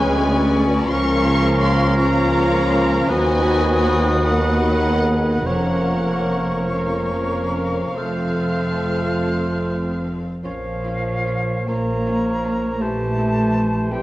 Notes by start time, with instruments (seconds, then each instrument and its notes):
Already playing: cello section D2, double bass section D2, trombone section C#3 G#3, bassoon G#3, french horn section B3 C#4, viola section C#4 G#4, clarinet C#4, oboe B4, violin section B4 G#5, flute C#6
0.09 violin section D5
0.86 cello section C#2, double bass section C#2, trombone section C#3 F3, bassoon F3, french horn section A#3 F4, viola section C#4 F4, oboe A#4, violin section A#4 F5 C#6
1.62 violin section C6
1.97 trombone section C#3 F3, french horn section A#3 F4, viola section C#4 F4, violin section A#4 F5 A#5
3.09 cello section D#2, double bass section D#2, trombone section D#3 F#3, french horn section B3 D#4, viola section B3 F#4, clarinet F#4, violin section B4 D#5 G#5, oboe B4, flute D#6
4.24 trombone section D#3 F#3, bassoon D#3, french horn section B3 D#4, viola section B3 F#4, violin section B4 D#5 F#5
4.85 viola section G#4
5.45 double bass section F1, cello section F2, bassoon F3, trombone section F3 A#3, french horn section C#4, viola section C#4 A#4, clarinet A#4, violin section A#4 C#5 F#5, oboe C#5, flute C#6
6.68 trombone section F3 A#3, french horn section C#4, viola section C#4 A#4, violin section A#4 C#5 F5
7.95 double bass section F1, cello section F2, trombone section F3 A3, viola section C4 F4, french horn section C4 F4, violin section A4 F5, clarinet A4, oboe C5, flute F6
10.43 double bass section A#1, cello section F3, french horn section F3, bassoon F3, viola section C#4, violin section F4 F5, clarinet A#4, oboe C#5, flute F5
10.84 viola section C#4, violin section F4 F5
11.25 viola section C#4, violin section F4 F5
11.67 double bass section A#1, bassoon F3, french horn section A#3, cello section A#3, viola section C#4, violin section F4 F5, clarinet A#4, oboe C#5, flute A#5
12.05 viola section C#4, violin section F4 F5
12.44 viola section C#4, violin section F4 F5
12.80 double bass section A#1, bassoon E3, cello section A3, french horn section A3, viola section C4, violin section E4 C5, clarinet G4, oboe C5, flute A5
13.16 viola section C4, violin section E4 C5
13.52 viola section C4, violin section E4 C5
13.89 double bass section A#1, bassoon E3, cello section G3, french horn section G3, viola section C4, violin section E4 C5, clarinet G4, flute G5
13.93 oboe C5